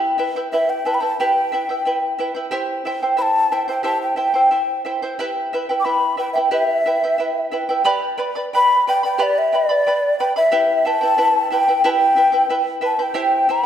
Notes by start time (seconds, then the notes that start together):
Already playing: E4 G4 B4 E5 G5
0.18 E4 B4 E5 G5
0.36 E4 B4 G5
0.53 E4 B4 E5 G5
0.70 G5
0.85 E4 B4 E5 G5 A5
0.94 B5
1.00 E4 B4 G5 A5
1.20 E4 G4 B4 E5 G5
1.52 E4 B4 E5 G5
1.69 E4 B4 G5
1.85 E4 B4 E5 G5
2.19 E4 B4 E5 G5
2.35 E4 B4 G5
2.51 E4 G4 C5 E5 G5
2.85 E4 C5 E5 G5
3.02 E4 C5 G5
3.17 E4 C5 E5 G5 B5
3.22 A5
3.52 E4 C5 E5 G5
3.68 E4 C5 G5
3.83 E4 G4 C5 E5 G5 A5
4.02 G5
4.16 E4 C5 E5 G5
4.34 E4 C5 G5
4.51 E4 C5 E5 G5
4.85 E4 C5 E5 G5
5.02 E4 C5 G5
5.19 E4 G4 B4 E5 G5
5.53 E4 B4 E5 G5
5.69 E4 B4 G5
5.80 D6
5.84 E4 B4 E5 G5 B5
6.17 E4 B4 E5 G5
6.33 B4 E5 G5
6.38 E4
6.51 E4 G4 B4 E5 G5
6.86 E4 B4 E5 G5
7.04 E4 B4 G5
7.18 E4 B4 E5 G5
7.51 E4 B4 E5 G5
7.69 E4 B4 G5
7.84 G4 B4 D5 G5 B5
8.18 B4 D5 G5 B5
8.35 B4 D5 B5
8.53 B4 D5 G5 B5
8.87 B4 D5 G5 B5
9.03 B4 D5 G5 B5
9.18 G4 B4 D5 G5 B5
9.38 E5
9.52 B4 D5 G5 B5
9.69 B4 D5 B5
9.87 B4 D5 G5 B5
10.19 B4 D5 G5 B5
10.36 B4 D5 E5 B5
10.52 E4 G4 B4 E5 G5
10.85 E4 B4 E5 G5 A5
11.01 E4 B4 G5
11.18 E4 B4 E5 G5
11.50 E4 B4 E5 G5
11.68 E4 B4 G5
11.84 E4 G4 B4 E5 G5 A5
11.90 G5
12.16 E4 B4 E5 G5
12.32 E4 B4 G5
12.49 E4 B4 E5 G5
12.81 E4 B4 E5 G5
12.86 A5
12.99 E4 B4 G5
13.14 E4 G4 C5 E5 G5
13.49 E4 C5 E5 G5 B5